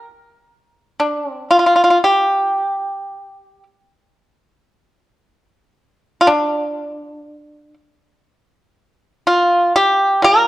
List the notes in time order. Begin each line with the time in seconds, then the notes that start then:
1.00 D4
1.31 C4
1.51 F4
1.59 F4
1.66 F4
1.76 F4
1.84 F4
1.90 F4
2.04 G4
6.21 F4
6.27 D4
9.27 F4
9.76 G4
10.22 A#2 A#4